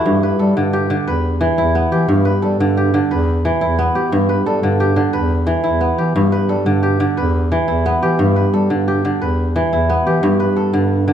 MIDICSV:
0, 0, Header, 1, 3, 480
1, 0, Start_track
1, 0, Key_signature, 1, "major"
1, 0, Tempo, 338983
1, 78, Time_signature, 12, 3, 24, 8
1, 15760, End_track
2, 0, Start_track
2, 0, Title_t, "Kora"
2, 0, Program_c, 0, 46
2, 0, Note_on_c, 0, 52, 81
2, 0, Note_on_c, 0, 62, 66
2, 0, Note_on_c, 0, 64, 66
2, 0, Note_on_c, 0, 66, 70
2, 0, Note_on_c, 0, 67, 66
2, 0, Note_on_c, 0, 69, 78
2, 0, Note_on_c, 0, 71, 62
2, 79, Note_on_c, 0, 43, 76
2, 149, Note_off_c, 0, 52, 0
2, 164, Note_off_c, 0, 66, 0
2, 322, Note_off_c, 0, 71, 0
2, 328, Note_on_c, 0, 71, 59
2, 551, Note_off_c, 0, 69, 0
2, 557, Note_on_c, 0, 69, 57
2, 804, Note_on_c, 0, 50, 77
2, 1032, Note_off_c, 0, 67, 0
2, 1037, Note_on_c, 0, 67, 69
2, 1259, Note_off_c, 0, 50, 0
2, 1276, Note_on_c, 0, 50, 73
2, 1517, Note_off_c, 0, 71, 0
2, 1522, Note_on_c, 0, 71, 69
2, 1586, Note_off_c, 0, 43, 0
2, 1586, Note_off_c, 0, 50, 0
2, 1992, Note_on_c, 0, 52, 84
2, 2181, Note_off_c, 0, 64, 0
2, 2218, Note_off_c, 0, 62, 0
2, 2237, Note_on_c, 0, 64, 69
2, 2423, Note_off_c, 0, 69, 0
2, 2479, Note_on_c, 0, 59, 72
2, 2712, Note_off_c, 0, 67, 0
2, 2717, Note_on_c, 0, 67, 61
2, 2952, Note_on_c, 0, 43, 73
2, 3025, Note_off_c, 0, 52, 0
2, 3182, Note_off_c, 0, 71, 0
2, 3188, Note_on_c, 0, 71, 61
2, 3431, Note_on_c, 0, 69, 63
2, 3687, Note_on_c, 0, 50, 80
2, 3921, Note_off_c, 0, 67, 0
2, 3927, Note_on_c, 0, 67, 66
2, 4144, Note_off_c, 0, 50, 0
2, 4161, Note_on_c, 0, 50, 71
2, 4398, Note_off_c, 0, 71, 0
2, 4404, Note_on_c, 0, 71, 64
2, 4455, Note_off_c, 0, 64, 0
2, 4464, Note_off_c, 0, 43, 0
2, 4464, Note_off_c, 0, 50, 0
2, 4885, Note_on_c, 0, 52, 79
2, 5115, Note_on_c, 0, 64, 66
2, 5118, Note_off_c, 0, 59, 0
2, 5297, Note_off_c, 0, 69, 0
2, 5360, Note_on_c, 0, 59, 73
2, 5590, Note_off_c, 0, 67, 0
2, 5595, Note_on_c, 0, 67, 58
2, 5840, Note_on_c, 0, 43, 79
2, 5903, Note_off_c, 0, 52, 0
2, 6070, Note_off_c, 0, 71, 0
2, 6076, Note_on_c, 0, 71, 60
2, 6321, Note_on_c, 0, 69, 68
2, 6560, Note_on_c, 0, 50, 73
2, 6792, Note_off_c, 0, 67, 0
2, 6798, Note_on_c, 0, 67, 68
2, 7011, Note_off_c, 0, 50, 0
2, 7028, Note_on_c, 0, 50, 70
2, 7261, Note_off_c, 0, 71, 0
2, 7266, Note_on_c, 0, 71, 69
2, 7333, Note_off_c, 0, 64, 0
2, 7343, Note_off_c, 0, 43, 0
2, 7343, Note_off_c, 0, 50, 0
2, 7740, Note_on_c, 0, 52, 77
2, 7981, Note_on_c, 0, 64, 66
2, 7999, Note_off_c, 0, 59, 0
2, 8187, Note_off_c, 0, 69, 0
2, 8224, Note_on_c, 0, 59, 67
2, 8468, Note_off_c, 0, 67, 0
2, 8473, Note_on_c, 0, 67, 59
2, 8717, Note_on_c, 0, 43, 84
2, 8783, Note_off_c, 0, 52, 0
2, 8946, Note_off_c, 0, 71, 0
2, 8952, Note_on_c, 0, 71, 61
2, 9191, Note_on_c, 0, 69, 60
2, 9431, Note_on_c, 0, 50, 75
2, 9662, Note_off_c, 0, 67, 0
2, 9668, Note_on_c, 0, 67, 65
2, 9896, Note_off_c, 0, 50, 0
2, 9913, Note_on_c, 0, 50, 78
2, 10153, Note_off_c, 0, 71, 0
2, 10158, Note_on_c, 0, 71, 62
2, 10199, Note_off_c, 0, 64, 0
2, 10223, Note_off_c, 0, 43, 0
2, 10223, Note_off_c, 0, 50, 0
2, 10644, Note_on_c, 0, 52, 78
2, 10862, Note_off_c, 0, 59, 0
2, 10873, Note_on_c, 0, 64, 63
2, 11057, Note_off_c, 0, 69, 0
2, 11125, Note_on_c, 0, 59, 77
2, 11359, Note_off_c, 0, 67, 0
2, 11365, Note_on_c, 0, 67, 67
2, 11597, Note_on_c, 0, 43, 76
2, 11664, Note_off_c, 0, 52, 0
2, 11834, Note_off_c, 0, 71, 0
2, 11840, Note_on_c, 0, 71, 59
2, 12087, Note_on_c, 0, 69, 66
2, 12322, Note_on_c, 0, 50, 73
2, 12564, Note_off_c, 0, 67, 0
2, 12570, Note_on_c, 0, 67, 68
2, 12794, Note_off_c, 0, 50, 0
2, 12811, Note_on_c, 0, 50, 70
2, 13043, Note_off_c, 0, 71, 0
2, 13049, Note_on_c, 0, 71, 64
2, 13091, Note_off_c, 0, 64, 0
2, 13104, Note_off_c, 0, 43, 0
2, 13104, Note_off_c, 0, 50, 0
2, 13533, Note_on_c, 0, 52, 76
2, 13764, Note_off_c, 0, 59, 0
2, 13775, Note_on_c, 0, 64, 64
2, 13953, Note_off_c, 0, 69, 0
2, 14012, Note_on_c, 0, 59, 72
2, 14247, Note_off_c, 0, 67, 0
2, 14253, Note_on_c, 0, 67, 64
2, 14484, Note_on_c, 0, 43, 78
2, 14545, Note_off_c, 0, 52, 0
2, 14716, Note_off_c, 0, 71, 0
2, 14722, Note_on_c, 0, 71, 60
2, 14961, Note_on_c, 0, 69, 59
2, 15201, Note_on_c, 0, 50, 71
2, 15667, Note_off_c, 0, 50, 0
2, 15684, Note_on_c, 0, 50, 75
2, 15760, Note_off_c, 0, 43, 0
2, 15760, Note_off_c, 0, 50, 0
2, 15760, Note_off_c, 0, 59, 0
2, 15760, Note_off_c, 0, 64, 0
2, 15760, Note_off_c, 0, 67, 0
2, 15760, Note_off_c, 0, 69, 0
2, 15760, Note_off_c, 0, 71, 0
2, 15760, End_track
3, 0, Start_track
3, 0, Title_t, "Bass clarinet"
3, 0, Program_c, 1, 71
3, 90, Note_on_c, 1, 43, 89
3, 480, Note_off_c, 1, 43, 0
3, 561, Note_on_c, 1, 55, 84
3, 757, Note_off_c, 1, 55, 0
3, 798, Note_on_c, 1, 43, 75
3, 1391, Note_off_c, 1, 43, 0
3, 1515, Note_on_c, 1, 40, 84
3, 2108, Note_off_c, 1, 40, 0
3, 2233, Note_on_c, 1, 40, 88
3, 2629, Note_off_c, 1, 40, 0
3, 2719, Note_on_c, 1, 52, 85
3, 2915, Note_off_c, 1, 52, 0
3, 2951, Note_on_c, 1, 43, 89
3, 3348, Note_off_c, 1, 43, 0
3, 3440, Note_on_c, 1, 55, 74
3, 3635, Note_off_c, 1, 55, 0
3, 3663, Note_on_c, 1, 43, 74
3, 4261, Note_off_c, 1, 43, 0
3, 4385, Note_on_c, 1, 40, 99
3, 4981, Note_off_c, 1, 40, 0
3, 5119, Note_on_c, 1, 40, 84
3, 5512, Note_off_c, 1, 40, 0
3, 5833, Note_on_c, 1, 43, 87
3, 6229, Note_off_c, 1, 43, 0
3, 6312, Note_on_c, 1, 55, 81
3, 6510, Note_off_c, 1, 55, 0
3, 6541, Note_on_c, 1, 43, 78
3, 7139, Note_off_c, 1, 43, 0
3, 7267, Note_on_c, 1, 40, 94
3, 7862, Note_off_c, 1, 40, 0
3, 7982, Note_on_c, 1, 40, 80
3, 8382, Note_off_c, 1, 40, 0
3, 8465, Note_on_c, 1, 52, 78
3, 8666, Note_off_c, 1, 52, 0
3, 8710, Note_on_c, 1, 43, 89
3, 9107, Note_off_c, 1, 43, 0
3, 9193, Note_on_c, 1, 55, 84
3, 9391, Note_off_c, 1, 55, 0
3, 9433, Note_on_c, 1, 43, 78
3, 10027, Note_off_c, 1, 43, 0
3, 10164, Note_on_c, 1, 40, 95
3, 10753, Note_off_c, 1, 40, 0
3, 10877, Note_on_c, 1, 40, 85
3, 11271, Note_off_c, 1, 40, 0
3, 11359, Note_on_c, 1, 52, 81
3, 11554, Note_off_c, 1, 52, 0
3, 11613, Note_on_c, 1, 43, 92
3, 12000, Note_off_c, 1, 43, 0
3, 12090, Note_on_c, 1, 55, 71
3, 12281, Note_off_c, 1, 55, 0
3, 12329, Note_on_c, 1, 43, 74
3, 12916, Note_off_c, 1, 43, 0
3, 13041, Note_on_c, 1, 40, 89
3, 13632, Note_off_c, 1, 40, 0
3, 13760, Note_on_c, 1, 40, 84
3, 14153, Note_off_c, 1, 40, 0
3, 14251, Note_on_c, 1, 52, 87
3, 14442, Note_off_c, 1, 52, 0
3, 14482, Note_on_c, 1, 43, 79
3, 14875, Note_off_c, 1, 43, 0
3, 15208, Note_on_c, 1, 43, 74
3, 15760, Note_off_c, 1, 43, 0
3, 15760, End_track
0, 0, End_of_file